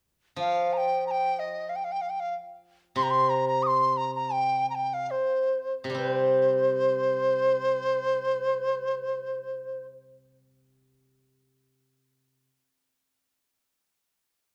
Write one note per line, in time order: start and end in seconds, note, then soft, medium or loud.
0.36 2.32 F3 medium
0.36 0.75 F5 medium
0.73 0.78 A#5 medium
0.77 1.05 G5 medium
1.07 1.12 A#5 medium
1.11 1.41 G5 medium
1.39 1.71 D#5 medium
1.69 1.77 F5 medium
1.76 1.86 G5 medium
1.84 1.93 F5 medium
1.92 2.03 G5 medium
2.01 2.11 F5 medium
2.10 2.22 G5 medium
2.20 2.35 F5 medium
2.96 5.08 C3 medium
2.96 3.05 C6 medium
3.03 3.12 A#5 medium
3.10 3.31 C6 loud
3.30 3.46 A#5 medium
3.48 3.64 A#5 medium
3.63 3.68 D#6 medium
3.67 3.99 C6 loud
3.97 4.14 A#5 medium
4.15 4.34 A#5 medium
4.33 4.69 G5 medium
4.70 4.76 A#5 medium
4.75 4.90 G5 medium
4.90 5.12 F5 medium
4.90 4.95 G5 medium
5.11 5.74 C5 medium
5.84 12.47 C3 soft
5.90 11.96 G3 soft
5.94 11.04 C4 soft
5.94 6.11 B4 medium
6.11 9.86 C5 medium